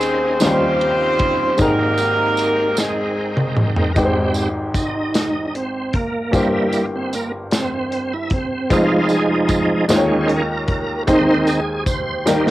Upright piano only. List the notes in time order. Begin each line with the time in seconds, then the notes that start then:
Already playing: D#2 D#3 A#3 C#4 D#4 G#4 D#5
0.40 D#2 D#3 F3 C#4 D#4 F4 C5
0.47 G3
1.57 G#1 G#2 G#3 C4 D#4 A#4 G5
3.95 G#1 G#2 G#3 D#4 G4 B4
4.05 C5
6.31 G1 G2 A#3 E4 G4 C5
8.70 F1 F2 G#3 D#4 F4 C5
9.88 D#2 D#3 G#3 D#4 F4 C5
9.96 C#5
11.07 D#2 D#3 G#3 C4 D#4 C5
12.26 D#2 D#3 G3 A#3 D#4 A#4